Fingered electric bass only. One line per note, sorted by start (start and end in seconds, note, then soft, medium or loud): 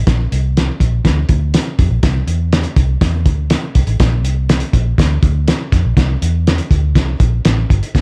0.07 0.26 A#1 loud
0.32 0.69 C2 medium
0.80 0.99 A#1 medium
1.04 1.23 D2 loud
1.29 1.57 D2 medium
1.79 1.88 F2 medium
1.90 2.00 A#1 medium
2.03 2.22 C2 loud
2.27 2.65 E2 medium
2.76 2.95 C2 loud
3.01 3.25 E2 medium
3.25 3.54 D2 medium
3.75 3.85 C2 medium
3.87 3.97 A1 medium
4.00 4.24 A#1 loud
4.24 4.61 C2 medium
4.74 4.93 A#1 medium
4.98 5.17 D2 medium
5.23 5.51 D2 medium
5.72 5.82 F2 medium
5.85 5.94 A#1 medium
5.97 6.16 C2 loud
6.22 6.59 E2 medium
6.71 6.95 D2 medium
6.95 7.14 C2 loud
7.20 7.39 A#1 medium
7.45 7.64 A1 medium
7.70 7.79 G1 medium
7.95 8.01 F2 medium